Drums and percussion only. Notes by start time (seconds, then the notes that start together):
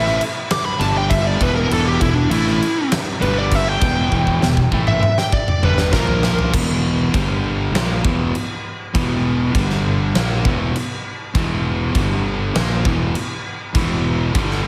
0.06 snare
0.21 crash
0.50 snare, crash
0.80 crash
1.11 kick, crash
1.41 kick, crash
1.71 crash
2.01 kick, crash
2.31 crash
2.47 snare
2.62 crash
2.92 snare, crash
3.22 crash
3.51 kick, crash
3.81 kick, crash
4.12 kick
4.27 kick
4.42 snare
4.57 kick
4.72 kick
4.87 mid tom
5.03 mid tom
5.18 snare
5.32 kick
5.48 mid tom
5.63 mid tom
5.78 snare
5.93 kick, snare
6.07 floor tom
6.23 snare
6.39 floor tom
6.54 kick, crash
7.14 kick, crash
7.75 snare, crash
8.05 kick
8.35 crash
8.95 kick, crash
9.55 kick, crash
9.70 snare
10.15 snare, crash
10.45 kick
10.76 crash
11.35 kick, crash
11.95 kick, crash
12.55 snare, crash
12.85 kick
13.15 crash
13.75 kick, crash
14.35 kick, crash
14.51 snare